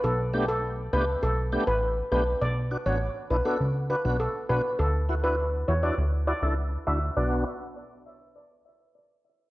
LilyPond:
<<
  \new Staff \with { instrumentName = "Steel pan" } { \time 4/4 \key b \minor \tempo 4 = 101 a'16 r8 a'16 r8 b'16 r16 a'16 r8 b'16 r8 b'16 r16 | d''16 r8 cis''16 r8 b'16 a'16 r8 b'16 r16 a'16 r16 b'16 r16 | a'16 r8 b'16 r8 cis''16 d''16 r8 d''16 r8. e''16 r16 | d''8 r2. r8 | }
  \new Staff \with { instrumentName = "Tonewheel organ" } { \time 4/4 \key b \minor r8 <a b d' g'>16 r8. <a b d' g'>16 r8. <a b d' g'>16 r8. <a b d' g'>16 r16 | r8 <d' fis'>16 <b d' fis'>16 r8 <d' e'>16 <b d' fis'>16 r8 <d' fis'>16 <b d' fis'>16 r8 <b d' fis'>16 r16 | r8 <e' fis'>16 <d' e' fis'>16 r8 <e' fis'>16 <d' e' fis'>16 r8 <e' fis'>16 <d' e' a'>16 r8 <d' e' fis'>16 r16 | <b d' fis'>8 r2. r8 | }
  \new Staff \with { instrumentName = "Analog synth bass" } { \clef bass \time 4/4 \key b \minor b,,4. cis,8 b,,8. a,,8. b,,8 | b,,8. a,,8 r16 b,,16 r16 cis,8. b,,8 r16 b,,16 r16 | d,4. e,8 d,8. cis,8. d,8 | b,,8 r2. r8 | }
>>